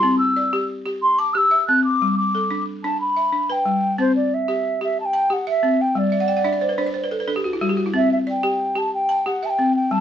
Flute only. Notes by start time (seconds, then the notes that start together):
Already playing: C6
0.18 E6
1.02 C6
1.18 D6
1.34 E6 F#6
1.67 F#6
1.84 D6
2.17 D6
2.83 A5
3.00 B5
3.51 G5
4.00 C5
4.16 D5
4.34 E5
4.83 E5
5.00 A5
5.05 G5
5.33 F#5
5.50 E5
5.81 G5
5.98 D5
7.96 E5
8.12 E5
8.30 G5
8.78 A5
8.93 G5
9.27 F#5
9.45 G5 A5
9.76 G5
9.91 A5